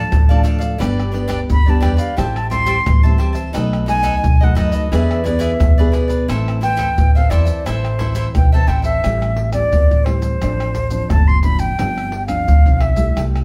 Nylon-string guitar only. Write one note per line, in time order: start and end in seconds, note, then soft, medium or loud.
0.00 0.23 F3 medium
0.00 0.23 A3 medium
0.00 0.23 D4 medium
0.12 0.77 A2 medium
0.30 0.76 F3 medium
0.30 0.76 A3 medium
0.30 0.76 D4 medium
0.81 1.46 G2 medium
0.81 1.01 G3 medium
0.81 1.01 B3 medium
0.81 1.01 D4 medium
1.13 1.60 G3 medium
1.13 1.60 B3 medium
1.13 1.60 D4 medium
1.49 2.14 D3 medium
1.66 2.12 G3 medium
1.66 2.13 B3 medium
1.66 2.13 D4 medium
2.17 2.83 A2 medium
2.17 2.38 G3 medium
2.17 2.38 C4 medium
2.17 2.38 E4 medium
2.51 2.97 G3 medium
2.51 2.98 C4 medium
2.51 2.98 E4 medium
2.87 3.52 E3 medium
3.05 3.50 G3 medium
3.05 3.50 C4 medium
3.05 3.51 E4 medium
3.55 4.20 B2 medium
3.55 3.84 F#3 medium
3.55 3.84 A3 medium
3.55 3.84 D#4 medium
3.89 4.21 F#3 medium
3.89 4.21 A3 medium
3.89 4.22 D#4 medium
4.24 4.89 F#2 medium
4.42 4.87 F#3 medium
4.42 4.88 A3 medium
4.42 4.88 D#4 medium
4.92 5.58 E3 medium
4.92 5.21 B3 medium
4.92 5.21 D4 medium
4.92 5.22 G#4 medium
5.26 5.72 B3 medium
5.26 5.72 D4 medium
5.26 5.73 G#4 medium
5.62 6.27 B2 medium
5.80 6.25 B3 medium
5.80 6.25 D4 medium
5.80 6.25 G#4 medium
6.30 6.95 A2 medium
6.30 6.59 E3 medium
6.30 6.59 C4 medium
6.30 6.59 E4 medium
6.63 6.98 E3 medium
6.63 7.09 C4 medium
6.63 7.10 E4 medium
6.99 7.16 E3 medium
7.17 7.62 E3 medium
7.17 7.63 C4 medium
7.17 7.63 E4 medium
7.67 8.32 A2 medium
7.67 7.87 E3 medium
7.67 7.87 C4 medium
7.67 7.88 E4 medium
8.00 8.36 E3 medium
8.00 8.47 C4 medium
8.00 8.47 E4 medium
8.37 8.53 E3 medium
8.55 9.00 E3 medium
8.55 9.00 C4 medium
8.55 9.00 E4 medium
9.05 9.70 A2 medium
9.05 9.51 G3 medium
9.05 9.51 C4 medium
9.05 9.51 E4 medium
9.53 10.01 G3 medium
9.53 10.01 C4 medium
9.53 10.01 E4 medium
9.74 10.39 E3 medium
10.06 10.36 G3 medium
10.06 10.36 C4 medium
10.06 10.36 E4 medium
10.42 11.07 A2 medium
10.42 10.74 F3 medium
10.42 10.74 C4 medium
10.42 10.75 D4 medium
10.91 11.38 F3 medium
10.91 11.38 C4 medium
10.91 11.38 D4 medium
11.11 11.76 A2 medium
11.44 11.73 F3 medium
11.44 11.74 C4 medium
11.44 11.74 D4 medium
11.79 12.44 G2 medium
11.79 12.11 F3 medium
11.79 12.12 C4 medium
11.79 12.12 D4 medium
12.28 12.58 F3 medium
12.28 12.58 C4 medium
12.28 12.59 D4 medium
12.48 13.13 D3 medium
12.67 12.95 F3 medium
12.67 12.95 C4 medium
12.67 12.95 D4 medium
12.97 13.44 G3 medium
12.97 13.44 A3 medium
12.97 13.44 E4 medium
13.17 13.44 C3 medium